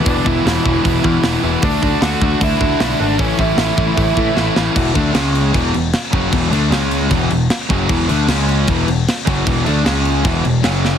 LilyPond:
<<
  \new Staff \with { instrumentName = "Lead electric guitar" } { \time 4/4 \key e \mixolydian \tempo 4 = 153 <d' d''>8 <e' e''>2. r8 | <d' d''>4 <fis' fis''>4 <e' e''>4. <d' d''>8 | <cis' cis''>8 <e' e''>2. r8 | r1 |
r1 | r1 | r1 | }
  \new Staff \with { instrumentName = "Distorted electric guitar" } { \clef bass \time 4/4 \key e \mixolydian <e gis b e'>8 <e gis b e'>8 <e gis b e'>8 <e gis b e'>8 <e gis b e'>8 <e gis b e'>8 <e gis b e'>8 <e gis b e'>8 | <d a d' fis'>8 <d a d' fis'>8 <d a d' fis'>8 <d a d' fis'>8 <d a d' fis'>8 <d a d' fis'>8 <d a d' fis'>8 <d a d' fis'>8 | <a, e a cis' e'>8 <a, e a cis' e'>8 <a, e a cis' e'>8 <a, e a cis' e'>8 <a, e a cis' e'>8 <a, e a cis' e'>8 <a, e a cis' e'>8 <a, e a cis' e'>8 | <e, b, e>8 <d a d'>8 <cis gis cis'>4 <e, b, e>8 <e, b,>8 r8 <fis, cis fis>8 |
<e, b, e>8 <d a d'>8 <cis gis cis'>4 <e, b, e>8 <e, b,>8 r8 <fis, cis fis>8 | <e, b, e>8 <d a d'>8 <cis gis cis'>4 <e, b, e>8 <e, b,>8 r8 <fis, cis fis>8 | <e, b, e>8 <d a d'>8 <cis gis cis'>4 <e, b, e>8 <e, b,>8 <fis, cis fis>4 | }
  \new Staff \with { instrumentName = "Overdriven electric guitar" } { \clef bass \time 4/4 \key e \mixolydian <e, b, e>8 <e, b, e>8 <e, b, e>8 <e, b, e>8 <e, b, e>8 <e, b, e>8 <e, b, e>8 <e, b, e>8 | <d a d'>8 <d a d'>8 <d a d'>8 <d a d'>8 <d a d'>8 <d a d'>8 <d a d'>8 <d a d'>8 | <a, e a>8 <a, e a>8 <a, e a>8 <a, e a>8 <a, e a>8 <a, e a>8 <a, e a>8 <a, e a>8 | <e, b, e>8 <d a d'>8 <cis gis cis'>4 <e, b, e>8 <e, b,>8 r8 <fis, cis fis>8 |
<e, b, e>8 <d a d'>8 <cis gis cis'>4 <e, b, e>8 <e, b,>8 r8 <fis, cis fis>8 | <e, b, e>8 <d a d'>8 <cis gis cis'>4 <e, b, e>8 <e, b,>8 r8 <fis, cis fis>8 | <e, b, e>8 <d a d'>8 <cis gis cis'>4 <e, b, e>8 <e, b,>8 <fis, cis fis>4 | }
  \new Staff \with { instrumentName = "Overdriven electric guitar" } { \clef bass \time 4/4 \key e \mixolydian <e, b, e>8 <e, b, e>8 <e, b, e>8 <e, b, e>8 <e, b, e>8 <e, b, e>8 <e, b, e>8 <e, b, e>8 | <d a d'>8 <d a d'>8 <d a d'>8 <d a d'>8 <d a d'>8 <d a d'>8 <d a d'>8 <d a d'>8 | <a, e a>8 <a, e a>8 <a, e a>8 <a, e a>8 <a, e a>8 <a, e a>8 <a, e a>8 <a, e a>8 | <e, b, e>8 <d a d'>8 <cis gis cis'>4 <e, b, e>8 <e, b,>8 r8 <fis, cis fis>8 |
<e, b, e>8 <d a d'>8 <cis gis cis'>4 <e, b, e>8 <e, b,>8 r8 <fis, cis fis>8 | <e, b, e>8 <d a d'>8 <cis gis cis'>4 <e, b, e>8 <e, b,>8 r8 <fis, cis fis>8 | <e, b, e>8 <d a d'>8 <cis gis cis'>4 <e, b, e>8 <e, b,>8 <fis, cis fis>4 | }
  \new Staff \with { instrumentName = "Picked electric bass" } { \clef bass \time 4/4 \key e \mixolydian e,,8 e,,8 e,,8 e,,8 e,,8 e,8 e,,8 e,,8 | d,8 d,8 d,8 d,8 d,8 d,8 b,,8 gis,,8 | a,,8 a,,8 a,,8 a,,8 a,,8 a,8 a,,8 a,,8 | e,,8 d,8 cis,4 e,,8 e,,8 r8 fis,,8 |
e,,8 d,8 cis,4 e,,8 e,,8 r8 fis,,8 | e,,8 d,8 cis,4 e,,8 e,,8 r8 fis,,8 | e,,8 d,8 cis,4 e,,8 e,,8 fis,,4 | }
  \new DrumStaff \with { instrumentName = "Drums" } \drummode { \time 4/4 <hho bd>8 bd8 <hho sn>8 bd8 <hho bd>8 bd8 <hho sn>4 | <hho bd>8 bd8 <hho sn>8 bd8 <hho bd>8 bd8 <hho sn>4 | <hho bd>8 bd8 <hho sn>8 bd8 <hho bd>8 bd8 sn8 sn8 | <cymc bd>8 <cymc bd>8 <cymc sn>8 cymc8 <cymc bd>8 cymc8 <cymc sn>8 <cymc bd>8 |
<cymc bd>8 cymc8 <cymc sn>8 cymc8 <cymc bd>8 cymc8 <cymc sn>8 <cymc bd>8 | <cymc bd>8 cymc8 <cymc sn>8 cymc8 <cymc bd>8 cymc8 <cymc sn>8 <cymc bd>8 | <cymc bd>8 cymc8 <cymc sn>8 cymc8 <cymc bd>8 cymc8 <cymc sn>8 sn8 | }
>>